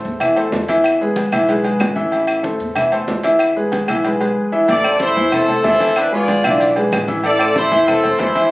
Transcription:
Already playing: A3 A4 C5
0.04 E2, high conga, maracas
0.20 E3 E4 E5, high conga, low conga, low agogo, claves, maracas
0.36 A3 A4 C5, low agogo, maracas
0.52 E2, high conga, low timbale, maracas
0.69 E3 E4 E5, high conga, low agogo, maracas
0.84 high conga, low agogo, claves, maracas
1.00 G#3 G#4 B4, high conga, maracas
1.16 high conga, low timbale, low agogo, maracas
1.32 B1 E3 E4 E5, low agogo, claves, maracas
1.48 G#3 G#4 B4, high conga, low agogo, maracas
1.64 G#3 G#4 B4, high conga, low agogo, maracas
1.79 A1, high conga, low timbale, low agogo, claves, maracas
1.96 E3 E4 E5, high conga, maracas
2.11 E3 E4 E5, high conga, low agogo, maracas
2.27 high conga, low agogo, claves, maracas
2.43 A3 A4 C5, high conga, low timbale, maracas
2.59 E2, high conga, maracas
2.75 E3 E4 E5, high conga, low conga, low agogo, claves, maracas
2.92 A3 A4 C5, high conga, low agogo, maracas
3.08 E2, high conga, low timbale, maracas
3.23 E3 E4 E5, high conga, low agogo, maracas
3.39 high conga, low agogo, claves, maracas
3.56 G#3 G#4 B4, high conga, maracas
3.72 high conga, low timbale, low agogo, maracas
3.88 B1 E3 E4 E5, high conga, low agogo, claves, maracas
4.04 G#3 G#4 B4, low agogo, maracas
4.20 G#3 G#4 B4, high conga, low agogo, maracas
4.52 E3 E4 E5
4.68 A1 E3 E4 A4 D5 E5, low agogo, maracas
4.84 A3 A4 C5, high conga, low agogo, claves, maracas
5.00 E4 C5, high conga, low timbale, maracas
5.16 E2 E3 E4 E5, maracas
5.32 C4 A4, high conga, low conga, low agogo, claves, maracas
5.48 A3 A4 C5, high conga, low conga, low agogo, maracas
5.64 E2 E3 C4 E4 A4 E5, high conga, low timbale, maracas
5.80 E3 E4 E5, high conga, low agogo, maracas
5.96 D4 B4, high conga, low agogo, claves, maracas
6.12 G#3 F4 G#4 B4 D5, high conga, maracas
6.28 high conga, low timbale, low agogo, maracas
6.44 B1 E3 D4 E5, high conga, low agogo, claves, maracas
6.60 high conga, low agogo, maracas
6.76 G#3 G#4 B4, low agogo, maracas
6.92 A1, high conga, low timbale, low agogo, claves, maracas
7.08 E3 E4 E5, high conga, maracas
7.24 E3 E4 A4 D5 E5, high conga, low agogo, maracas
7.39 A3 A4 C5, high conga, low agogo, claves, maracas
7.56 E4 C5, high conga, low timbale, maracas
7.71 E2 E3 E4 E5, high conga, maracas
7.88 C4 A4, high conga, low conga, low agogo, claves, maracas
8.03 A3 A4 C5, high conga, low conga, low agogo, maracas
8.19 E2 E3 E4 C5 E5, high conga, low timbale, maracas
8.35 E3 E4 E5, high conga, low agogo, maracas

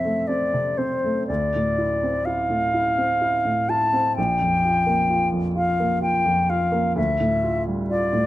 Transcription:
Already playing: F2 C3 A3 C4 E5
0.05 A3
0.27 C4 D5
0.54 C3
0.78 C4 C5
1.04 A3
1.27 D2 D5
1.55 A2
1.78 E4
2.03 C4
2.25 E4 F5
2.50 A2
2.74 E4
2.98 C4
3.22 E4
3.45 A2
3.69 E4 A5
3.93 C4
4.16 A#1 G5
4.41 F2
4.65 F4
4.87 A#3
5.10 F4
5.32 F2
5.56 F4 F5
5.80 A#3
6.02 F4 G5
6.25 F2
6.50 F4 F5
6.72 A#3
6.96 D2 E5
7.20 A2
7.44 F4
7.67 G3
7.90 F4 D5
8.13 A2

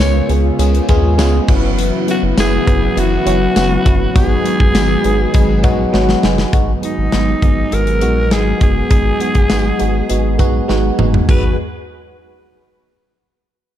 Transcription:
Already playing: C#3 G#3 B3 C#4 F4 A#4 C#5
0.00 C#2 G#3 B3 C#4 F4 G#4, closed hi-hat, tambourine
0.29 C#2 G#3 B3 C#4 F4 G#4, closed hi-hat
0.59 C#2 C#3 G#3 B3 C#4 F4 G#4, closed hi-hat
0.75 closed hi-hat
0.89 D#2 G#3 B3 C#4 F4 G#4, kick, closed hi-hat
1.18 C#2 G#3 B3 C#4 F4 G#4, snare, closed hi-hat, tambourine
1.48 F#1 F#2 C#3 E3 F#3 B3 C#4 E4 F#4 B4, kick, crash
1.79 closed hi-hat
2.08 F#3 B3 C#4 E4 F#4, closed hi-hat
2.23 F#1
2.37 F#1 F#2 C#3 F#3 B3 C#4 E4 F#4 G#4, snare, closed hi-hat, tambourine
2.67 F#1 F#3 B3 C#4 E4 F#4, kick, closed hi-hat
2.96 F#1 F#2 C#3 F#3 B3 C#4 E4 F#4, closed hi-hat
3.26 F#1 C#3 F#3 B3 C#4 E4 F#4, closed hi-hat
3.56 F#1 F#3 B3 C#4 E4 F#4, snare, closed hi-hat, tambourine
3.85 F#1 F#3 B3 C#4 E4 F#4, kick, closed hi-hat
4.14 G#1 G#2 D#3 F#3 G#3 B3 D#4 F#4 G#4 B4, kick, closed hi-hat
4.44 F#3 G#3 B3 D#4 F#4, closed hi-hat
4.60 G#1, kick
4.74 G#1 G#2 D#3 F#3 G#3 B3 D#4 F#4, snare, closed hi-hat, tambourine
5.04 G#1 F#3 G#3 B3 D#4 G#4, closed hi-hat
5.33 G#1 G#2 D#3 F#3 G#3 B3 D#4 G#4, kick, closed hi-hat
5.63 A#1 D#3 F#3 G#3 B3 D#4 F#4, kick, closed hi-hat
5.93 G#1 F#3 G#3 B3 D#4 F#4, snare
6.09 snare
6.23 F#1 F#3 G#3 B3 D#4 G#4, snare
6.38 snare
6.53 G#1 F#3 G#3 B3 D#4 F#4 G#4, kick, closed hi-hat
6.82 G#3 B3 D#4 F#4, closed hi-hat
6.98 G#1
7.12 G#1 G#3 B3 D#4 F#4, snare, closed hi-hat
7.42 G#1 G#3 B3 D#4 G#4, kick, closed hi-hat
7.71 G#1 G#3 B3 D#4 F#4 A#4, closed hi-hat
7.87 closed hi-hat
8.01 A#1 G#3 B3 D#4 F#4, closed hi-hat
8.31 G#1 G#3 B3 D#4 G#4, snare, closed hi-hat
8.60 F#1 G#3 B3 D#4 F#4 G#4, kick, closed hi-hat
8.90 G#1 G#3 B3 D#4 G#4, kick, closed hi-hat
9.20 G#3 B3 D#4 F#4, closed hi-hat
9.35 G#1, kick, closed hi-hat
9.49 G#1 G#3 B3 D#4 F#4, snare, closed hi-hat, tambourine
9.79 G#1 G#3 B3 D#4 F#4, closed hi-hat
10.09 G#1 G#3 B3 D#4 F#4, closed hi-hat
10.38 A#1 G#3 B3 D#4 F#4, kick, closed hi-hat
10.68 G#1 G#3 B3 D#4 F#4, snare
10.98 F#1 G#3 B3 D#4 F#4, mid tom
11.14 floor tom
11.28 G#1 F#3 G#3 B3 D#4 F#4 G#4 B4, kick, crash

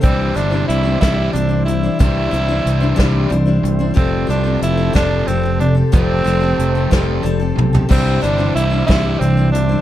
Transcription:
Already playing: G5
0.01 C2 C3 E3 G3 C4 D4 E4 C5 E5 D6, kick, closed hi-hat
0.34 G1 G3 D4 E4 C5, closed hi-hat
0.51 G3 D4 E4 C5
0.68 C2 E4, closed hi-hat
0.83 G3 D4 E4 C5
1.01 C2 C3 E3 G3 D4 E4 C5, kick, snare, closed hi-hat
1.33 C2 C3 E3 G3 D4 E4 C5, closed hi-hat
1.49 G3 D4 E4 C5
1.65 C3 E3 E4, closed hi-hat
1.83 G3 D4 E4 C5
1.99 C2 C3 E3 G3 D4 E4 C5 C6, kick, closed hi-hat
2.31 C2 G3 D4 E4 C5, closed hi-hat
2.48 G3 D4 E4 C5
2.66 C2, closed hi-hat
2.80 G3 D4 E4 C5
2.96 C2 C3 E3 G3 D4 E4 C5, kick, snare, closed hi-hat
3.30 C2 C3 E3 G3 D4 E4 C5, closed hi-hat
3.46 G3 D4 E4 C5
3.64 C2 C3 E3, closed hi-hat
3.79 G3 D4 E4 C5
3.94 F1 F2 C3 F3 G3 C4 G4 A4, kick, closed hi-hat
3.98 A5
4.27 C2 G3 C4 D4 G4 A4, closed hi-hat
4.44 C4 G4 A4
4.62 F1 E4, closed hi-hat
4.78 C4 G4 A4
4.93 F1 F2 C3 F3 G3 C4 D4 G4 A4, kick, snare, closed hi-hat
5.27 F1 F2 C3 G3 C4 G4 A4, closed hi-hat
5.43 C4 G4 A4
5.60 F2 C3 D4, closed hi-hat
5.75 C4 G4 A4
5.92 F1 F2 C3 F3 G3 C4 G4 A4, kick, closed hi-hat
6.24 F1 G3 C4 G4 A4, closed hi-hat
6.41 C4 G4 A4
6.59 F1, closed hi-hat
6.75 C4 G4 A4
6.91 F1 F2 C3 F3 G3 C4 G4 A4, kick, snare, closed hi-hat
7.23 F1 F2 C3 G3 C4 G4 A4, closed hi-hat
7.40 C4 G4 A4
7.56 B1 F2 C3, high tom
7.73 C4 G4 A4, floor tom
7.89 C2 C3 E3 G3 C4 D4 E4 C5 E5 G5 D6, kick, crash
8.22 G1 G3 D4 E4 C5, closed hi-hat
8.38 G3 D4 E4 C5
8.55 C2 E4, closed hi-hat
8.71 G3 D4 E4 C5
8.86 C2 C3 E3 G3 D4 E4 C5, kick, snare, closed hi-hat
9.19 C2 C3 E3 G3 C4 D4 E4, closed hi-hat
9.24 C5
9.37 G3 D4 E4 C5
9.52 C3 E3 D4, closed hi-hat
9.69 G3 D4 E4 C5

